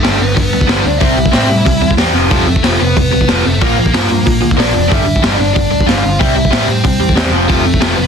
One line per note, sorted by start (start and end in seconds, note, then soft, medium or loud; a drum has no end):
0.00 0.18 G2 medium
0.00 0.18 D3 medium
0.00 0.19 G3 loud
0.00 0.18 A3 medium
0.00 0.22 A4 medium
0.04 0.18 G1 medium
0.04 snare loud
0.04 open hi-hat medium
0.19 0.34 G1 medium
0.19 0.35 G2 medium
0.19 0.35 D3 medium
0.19 0.36 B3 medium
0.19 0.34 B4 medium
0.35 0.51 G1 medium
0.35 0.51 G2 medium
0.35 0.51 D3 medium
0.35 0.83 B3 medium
0.35 0.81 B4 medium
0.35 kick loud
0.35 open hi-hat medium
0.53 0.67 D2 medium
0.53 0.66 G2 medium
0.53 0.67 D3 medium
0.61 kick medium
0.67 0.83 G1 medium
0.67 0.83 G2 medium
0.67 0.84 D3 medium
0.67 0.85 G3 medium
0.67 snare loud
0.67 open hi-hat medium
0.81 0.98 D2 medium
0.81 1.00 G2 medium
0.81 1.00 D4 medium
0.81 1.00 D5 medium
0.86 1.00 D3 medium
0.98 1.15 C2 medium
0.98 1.16 C3 medium
0.98 1.17 G3 medium
0.98 1.17 C4 loud
0.98 1.95 E4 medium
0.98 1.93 E5 loud
0.98 kick loud
0.98 open hi-hat medium
1.17 1.31 C2 medium
1.17 1.30 C3 medium
1.17 1.31 G3 medium
1.26 kick medium
1.32 1.48 A2 medium
1.32 1.48 C3 medium
1.32 1.48 G3 medium
1.32 1.49 C4 loud
1.32 snare loud
1.32 open hi-hat medium
1.49 1.64 A2 medium
1.49 1.64 C3 medium
1.49 1.65 G3 medium
1.66 1.80 C2 medium
1.66 1.80 C3 medium
1.66 1.80 G3 medium
1.66 kick loud
1.66 open hi-hat medium
1.82 1.96 E2 medium
1.82 1.96 C3 medium
1.82 1.97 G3 medium
1.91 kick medium
1.97 2.13 E2 medium
1.97 2.13 C3 medium
1.97 2.14 G3 medium
1.97 2.14 C4 medium
1.97 snare loud
1.97 open hi-hat medium
2.14 2.29 F1 medium
2.14 2.28 F2 medium
2.14 2.29 C3 medium
2.14 2.29 F3 medium
2.30 2.45 F1 medium
2.30 2.46 F2 medium
2.30 2.46 C3 loud
2.30 2.46 F3 medium
2.30 2.77 A3 medium
2.30 2.82 A4 medium
2.30 kick loud
2.30 open hi-hat medium
2.47 2.62 F2 medium
2.47 2.61 F2 medium
2.47 2.62 C3 medium
2.56 kick medium
2.63 2.77 F1 medium
2.63 2.79 F2 medium
2.63 2.79 C3 loud
2.63 2.79 F3 loud
2.63 snare loud
2.63 open hi-hat medium
2.80 2.94 F1 medium
2.80 2.95 F2 medium
2.80 2.95 C3 medium
2.80 2.96 B3 medium
2.80 2.97 B4 medium
2.97 3.10 F2 medium
2.97 3.11 C3 medium
2.97 3.43 B3 medium
2.97 3.47 B4 medium
2.97 kick loud
2.97 open hi-hat medium
3.12 3.26 C2 medium
3.12 3.27 F2 medium
3.12 3.27 C3 medium
3.21 kick medium
3.28 3.43 F1 medium
3.28 3.43 F2 medium
3.28 3.44 C3 medium
3.28 3.44 F3 medium
3.28 snare loud
3.28 open hi-hat medium
3.44 3.61 F1 medium
3.44 3.59 F2 medium
3.44 3.59 C3 medium
3.44 3.61 A3 medium
3.44 3.62 A4 medium
3.61 3.75 A#1 medium
3.61 3.76 A#2 medium
3.61 3.77 F3 loud
3.61 3.77 A#3 medium
3.61 4.55 A#3 medium
3.61 4.62 A#4 medium
3.61 kick loud
3.61 open hi-hat medium
3.78 3.91 A#1 medium
3.78 3.92 A#2 medium
3.78 3.93 F3 medium
3.86 kick medium
3.94 4.08 G2 medium
3.94 4.09 A#2 medium
3.94 4.09 F3 medium
3.94 4.09 A#3 loud
3.94 snare loud
3.94 open hi-hat medium
4.10 4.24 G2 medium
4.10 4.25 A#2 medium
4.10 4.25 F3 medium
4.26 4.40 A#1 medium
4.26 4.40 A#2 medium
4.26 4.41 F3 medium
4.26 kick loud
4.26 open hi-hat medium
4.41 4.56 D2 medium
4.41 4.56 A#2 medium
4.41 4.57 F3 medium
4.51 kick medium
4.57 4.72 A#1 medium
4.57 4.72 A#2 medium
4.57 4.72 F3 medium
4.57 4.73 A#3 medium
4.57 4.90 D4 medium
4.57 4.92 D5 medium
4.57 snare loud
4.57 open hi-hat medium
4.73 4.88 F1 medium
4.73 4.89 A#2 medium
4.73 4.89 F3 medium
4.89 5.05 G1 medium
4.89 5.04 G2 medium
4.89 5.05 D3 loud
4.89 5.06 G3 loud
4.89 5.25 E5 loud
4.89 kick loud
4.89 open hi-hat medium
4.94 5.22 E4 medium
5.06 5.21 G2 medium
5.06 5.21 D3 medium
5.16 kick medium
5.23 5.37 G1 medium
5.23 5.38 G2 medium
5.23 5.38 D3 medium
5.23 5.39 G3 loud
5.23 5.54 D4 medium
5.23 5.53 D5 medium
5.23 snare loud
5.23 open hi-hat medium
5.39 5.53 G1 medium
5.39 5.54 G2 medium
5.39 5.54 D3 medium
5.54 5.69 G2 medium
5.54 5.70 D3 medium
5.54 5.85 D4 medium
5.54 5.85 D5 loud
5.54 kick loud
5.54 open hi-hat soft
5.71 5.86 D2 medium
5.71 5.85 G2 medium
5.71 5.86 D3 medium
5.81 kick medium
5.86 6.02 G1 medium
5.86 6.02 G2 medium
5.86 6.02 D3 medium
5.86 6.03 G3 medium
5.86 6.17 F4 medium
5.86 6.20 F5 medium
5.86 snare loud
5.86 open hi-hat medium
6.04 6.18 G1 medium
6.04 6.18 G2 medium
6.04 6.19 D3 medium
6.19 6.34 C2 medium
6.19 6.34 C3 medium
6.19 6.35 G3 medium
6.19 6.36 C4 loud
6.19 6.35 E4 medium
6.19 6.35 E5 medium
6.19 kick loud
6.19 open hi-hat medium
6.36 6.50 C2 medium
6.36 6.50 C3 medium
6.36 6.50 G3 medium
6.36 6.66 E4 medium
6.36 6.70 E5 loud
6.45 kick medium
6.51 6.66 A2 medium
6.51 6.65 C3 medium
6.51 6.66 G3 medium
6.51 6.67 C4 medium
6.51 snare loud
6.51 open hi-hat medium
6.67 6.82 A2 medium
6.67 6.82 C3 medium
6.67 6.83 G3 medium
6.67 7.14 C4 medium
6.67 7.13 C5 medium
6.84 6.99 C2 medium
6.84 6.99 C3 medium
6.84 6.99 G3 medium
6.84 kick loud
6.84 open hi-hat medium
7.00 7.14 E2 medium
7.00 7.14 C3 medium
7.00 7.15 G3 medium
7.09 kick medium
7.15 7.30 E2 medium
7.15 7.31 C3 medium
7.15 7.32 G3 medium
7.15 7.32 C4 medium
7.15 snare loud
7.15 open hi-hat medium
7.31 7.46 F1 medium
7.31 7.47 F2 medium
7.31 7.47 C3 medium
7.31 7.48 F3 loud
7.48 7.63 F1 medium
7.48 7.64 F2 medium
7.48 7.64 C3 medium
7.48 7.65 F3 loud
7.48 7.95 A3 medium
7.48 7.99 A4 medium
7.48 kick loud
7.48 open hi-hat medium
7.64 7.79 F2 medium
7.64 7.80 C3 medium
7.74 kick medium
7.81 7.95 F1 medium
7.81 7.95 F2 medium
7.81 7.96 C3 medium
7.81 7.97 F3 loud
7.81 snare loud
7.81 open hi-hat medium
7.96 8.07 F1 medium
7.96 8.07 F2 medium
7.96 8.07 C3 medium
7.96 8.04 B3 medium
7.96 8.01 B4 medium